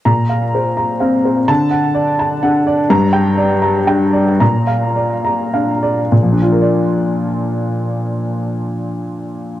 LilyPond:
<<
  \new Staff \with { instrumentName = "Upright piano" } { \time 3/4 \key bes \major \tempo 4 = 111 << { bes''4 r2 | a''4 r2 | bes''4 r2 | bes''4 r2 |
<bes, f d' f' bes' d''>2.~ | <bes, f d' f' bes' d''>2. | } \\ { r8 f''8 c''8 bes''8 f''8 c''8 | r8 fis''8 d''8 a''8 fis''8 d''8 | r8 g''8 d''8 bes''8 g''8 d''8 | r8 f''8 d''8 bes''8 f''8 d''8 |
r2. | r2. | } >> }
  \new Staff \with { instrumentName = "Upright piano" } { \clef bass \time 3/4 \key bes \major bes,2 c'4 | d2 d'4 | g,2 d'4 | bes,2 d'4 |
r2. | r2. | }
>>